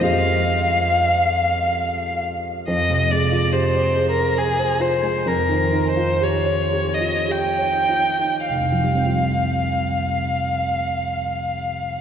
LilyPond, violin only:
\new Staff \with { instrumentName = "Violin" } { \time 3/4 \key f \minor \tempo 4 = 65 f''2~ f''8 r8 | ees''8 d''8 \tuplet 3/2 { c''4 bes'8 } aes'8 c''8 | \tuplet 3/2 { bes'4 c''8 des''4 ees''8 } g''4 | f''2. | }